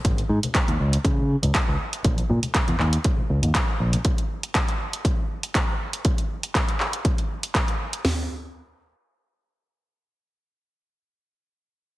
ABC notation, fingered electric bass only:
X:1
M:4/4
L:1/16
Q:"Swing 16ths" 1/4=120
K:D#phr
V:1 name="Fingered electric bass" clef=bass
G,,, z G,, z2 D,, C,, z C,2 z C,, z C,, z2 | A,,, z A,, z2 E,, D,, z3 C,, D,, z2 A,,, z | z16 | z16 |
z16 | z16 |]